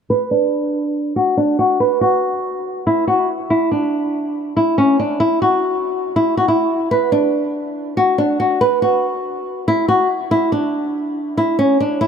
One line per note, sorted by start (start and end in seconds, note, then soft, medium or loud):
0.10 0.28 B4 medium
0.31 1.12 D4 medium
1.16 1.35 F#4 medium
1.37 1.56 D4 medium
1.59 1.77 F#4 medium
1.80 1.99 B4 medium
2.01 2.82 F#4 medium
2.87 3.05 E4 medium
3.07 3.26 F#4 medium
3.50 3.69 E4 medium
3.71 4.53 D4 medium
4.57 4.75 E4 medium
4.78 4.96 C#4 medium
4.99 5.18 D4 medium
5.20 5.39 E4 medium
5.42 6.12 F#4 medium
6.16 6.35 E4 medium
6.37 6.47 F#4 medium
6.48 6.88 E4 medium
6.91 7.09 B4 medium
7.12 7.93 D4 medium
7.97 8.16 F#4 medium
8.18 8.37 D4 medium
8.40 8.58 F#4 medium
8.61 8.79 B4 medium
8.82 9.63 F#4 medium
9.68 9.86 E4 medium
9.88 10.07 F#4 medium
10.31 10.50 E4 medium
10.52 11.33 D4 medium
11.37 11.56 E4 medium
11.59 11.77 C#4 medium
11.80 11.99 D4 medium
12.01 12.07 E4 medium